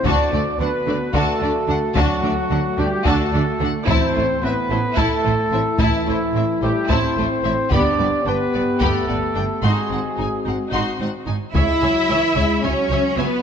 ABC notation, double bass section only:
X:1
M:7/8
L:1/8
Q:1/4=110
K:Ador
V:1 name="Double bass section" clef=bass
D,, D,, D,, D,, D,, D,, D,, | D,, D,, D,, D,, D,, D,, D,, | A,,, A,,, A,,, A,,, A,,, A,,, A,,, | A,,, A,,, A,,, A,,, A,,, A,,, A,,, |
G,,, G,,, G,,, G,,, G,,, G,,, G,,, | ^G,,, G,,, G,,, G,,, G,,, G,,, G,,, | [K:C#m] C,, C,, C,, C,, C,, C,, C,, |]